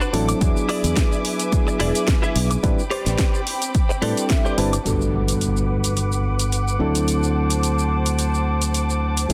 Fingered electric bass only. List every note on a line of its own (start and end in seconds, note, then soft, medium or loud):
0.13 0.32 A1 medium
0.41 0.51 E2 loud
0.84 0.92 E2 loud
1.80 1.90 E1 medium
2.36 2.54 B1 medium
2.64 2.73 A1 medium
3.06 3.15 A1 medium
4.02 4.12 A2 medium
4.58 4.77 G1 medium
4.86 6.78 G1 medium
6.80 9.28 D2 medium
9.30 9.33 E2 medium